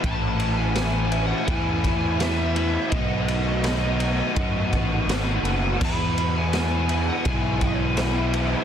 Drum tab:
CC |--------|--------|x-------|
RD |xxxxxxxx|xxxxxxxx|-xxxxxxx|
SD |--o---o-|--o---o-|--o---o-|
BD |o---oo--|o---oo--|o---oo--|